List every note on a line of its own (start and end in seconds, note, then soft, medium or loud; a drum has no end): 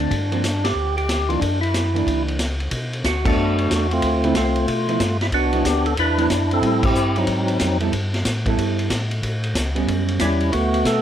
0.00 0.11 D3 medium
0.00 0.11 A3 medium
0.00 0.11 C4 medium
0.00 0.67 D4 medium
0.00 0.11 F#4 medium
0.10 0.73 G2 medium
0.10 kick soft
0.10 ride medium
0.32 0.42 F3 medium
0.32 0.43 A#3 medium
0.32 0.43 C4 medium
0.32 ride soft
0.44 snare medium
0.44 hi-hat pedal medium
0.44 ride medium
0.64 0.96 G4 loud
0.64 snare medium
0.64 ride medium
0.75 1.37 D2 medium
0.97 1.31 G4 medium
0.97 ride soft
1.09 snare medium
1.09 hi-hat pedal medium
1.09 ride medium
1.29 1.40 E3 medium
1.29 1.40 A#3 medium
1.29 1.41 D4 medium
1.29 1.40 F4 medium
1.29 ride soft
1.40 2.03 F#2 medium
1.40 1.60 D4 medium
1.40 kick soft
1.40 ride medium
1.61 2.23 E4 medium
1.61 ride soft
1.74 snare medium
1.74 hi-hat pedal soft
1.74 ride medium
1.93 2.36 E3 medium
1.93 2.37 A#3 medium
1.93 2.37 D4 medium
1.93 ride soft
2.06 2.68 C#2 medium
2.06 kick soft
2.06 ride medium
2.28 ride soft
2.39 snare medium
2.39 hi-hat pedal medium
2.39 ride medium
2.60 ride soft
2.71 3.03 B2 medium
2.71 kick soft
2.71 ride medium
2.93 ride soft
3.04 3.36 D2 medium
3.04 3.25 F#4 medium
3.04 kick soft
3.04 snare medium
3.04 hi-hat pedal medium
3.04 ride medium
3.25 3.87 A3 medium
3.25 3.67 B3 medium
3.25 3.67 D4 medium
3.25 3.88 D4 medium
3.25 3.93 F#4 medium
3.25 3.67 A4 medium
3.25 3.67 C#5 medium
3.25 kick medium
3.25 crash medium
3.36 3.68 F#2 medium
3.58 ride soft
3.70 4.01 E2 medium
3.70 kick soft
3.70 snare medium
3.70 hi-hat pedal medium
3.70 ride medium
3.91 4.36 A3 medium
3.91 4.36 C4 medium
3.91 4.25 F4 medium
3.91 ride soft
4.02 4.33 D2 medium
4.02 kick soft
4.02 ride medium
4.24 4.34 D3 medium
4.24 4.34 A3 medium
4.24 4.35 C4 medium
4.24 4.35 E4 medium
4.24 4.35 F4 medium
4.24 ride soft
4.35 4.66 C2 medium
4.35 5.18 A3 medium
4.35 4.66 C4 medium
4.35 5.17 F4 medium
4.35 kick soft
4.35 snare medium
4.35 hi-hat pedal soft
4.35 ride medium
4.56 ride soft
4.67 4.99 B2 medium
4.67 kick soft
4.67 ride medium
4.88 4.99 F3 medium
4.88 4.99 B3 medium
4.88 4.99 E4 medium
4.88 ride soft
4.99 5.31 G2 medium
4.99 kick soft
4.99 snare medium
4.99 hi-hat pedal medium
4.99 ride medium
5.21 5.27 E4 medium
5.21 snare soft
5.21 ride soft
5.32 5.63 C2 medium
5.32 5.94 B3 medium
5.32 5.94 D4 medium
5.32 5.67 F#4 medium
5.32 kick soft
5.32 ride medium
5.53 5.63 F#3 medium
5.53 5.64 B3 medium
5.53 5.64 E4 medium
5.53 ride soft
5.64 5.96 D2 medium
5.64 5.87 G4 medium
5.64 kick soft
5.64 snare medium
5.64 hi-hat pedal medium
5.64 ride medium
5.86 5.97 A4 medium
5.86 ride soft
5.96 6.28 E2 medium
5.96 6.60 D4 medium
5.96 6.52 E4 medium
5.96 6.29 B4 loud
5.96 kick soft
5.96 ride medium
6.18 6.28 F#3 medium
6.18 6.29 B3 medium
6.18 6.29 E4 medium
6.18 ride soft
6.29 6.61 F#2 medium
6.29 kick soft
6.29 snare medium
6.29 hi-hat pedal medium
6.29 ride medium
6.51 6.83 C4 medium
6.51 6.84 E4 medium
6.51 6.85 A4 loud
6.51 ride soft
6.62 6.93 A2 medium
6.62 6.81 G3 soft
6.62 6.81 C4 medium
6.62 6.82 E4 medium
6.62 kick soft
6.62 ride medium
6.83 7.17 C4 medium
6.83 7.25 E4 medium
6.83 7.18 G4 loud
6.83 kick medium
6.83 crash medium
6.94 7.26 G2 medium
6.94 hi-hat pedal medium
7.16 7.78 F#3 medium
7.16 7.78 C4 medium
7.16 7.78 D#4 medium
7.16 ride soft
7.26 7.58 G#2 medium
7.26 kick soft
7.26 ride medium
7.48 ride soft
7.59 7.91 F2 medium
7.59 kick soft
7.59 snare medium
7.59 hi-hat pedal medium
7.59 ride medium
7.80 7.91 G3 medium
7.80 7.91 B3 medium
7.80 7.91 E4 medium
7.80 7.91 A4 medium
7.80 ride soft
7.92 8.24 G2 medium
7.92 kick soft
7.92 ride medium
8.14 snare soft
8.14 ride soft
8.24 8.56 A2 medium
8.24 kick soft
8.24 snare medium
8.24 hi-hat pedal medium
8.24 ride medium
8.46 8.88 G3 medium
8.46 8.88 B3 medium
8.46 8.88 E4 medium
8.46 8.89 A4 medium
8.46 kick medium
8.46 ride soft
8.58 8.89 G2 medium
8.58 kick soft
8.58 ride medium
8.79 ride soft
8.90 9.21 A2 medium
8.90 kick soft
8.90 snare medium
8.90 hi-hat pedal medium
8.90 ride medium
9.11 ride soft
9.22 9.54 A2 medium
9.22 kick soft
9.22 ride medium
9.44 ride soft
9.54 9.86 C#2 medium
9.54 kick soft
9.54 snare medium
9.54 hi-hat pedal medium
9.54 ride medium
9.75 10.17 G3 medium
9.75 10.18 B3 medium
9.75 10.18 C#4 medium
9.75 ride soft
9.87 10.19 F#2 medium
9.87 kick soft
9.87 ride medium
10.08 ride soft
10.19 10.51 E2 medium
10.19 10.51 G3 medium
10.19 10.51 C#4 medium
10.19 10.54 E4 medium
10.19 kick soft
10.19 snare medium
10.19 hi-hat pedal medium
10.19 ride medium
10.40 ride soft
10.52 10.84 D2 medium
10.52 11.02 A3 medium
10.52 11.02 B3 medium
10.52 10.86 F#4 loud
10.52 kick soft
10.52 ride medium
10.74 ride soft
10.84 11.02 B2 medium
10.84 11.02 A4 loud
10.84 kick soft
10.84 snare medium
10.84 hi-hat pedal medium
10.84 ride medium